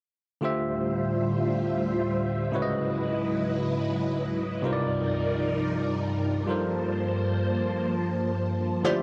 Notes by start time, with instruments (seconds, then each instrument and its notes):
0.41 string machine D2 A2 G3 F4 C5 E5, tine electric piano D3 A3 F4 G4 C5
0.45 tine electric piano E5
2.52 string machine C#2 G#2 F#3 E4 B4 D#5, tine electric piano C#3 G#3 E4 F#4 B4
2.56 tine electric piano C#5
2.62 tine electric piano D#5
4.62 string machine C2 G2 F3 D#4 A#4 D5, tine electric piano C3 G3 D#4 F4 A#4
4.66 tine electric piano C5
4.73 tine electric piano D5
6.46 string machine F3 A#3 C5 A5, tine electric piano G3 F4 A4 A#4
6.51 tine electric piano C5
8.83 string machine D2 A2 C4 G4 E5, tine electric piano D3 A3 E4 F4 G4, synth pluck F4 G4 C5 D5 E5
8.88 tine electric piano C5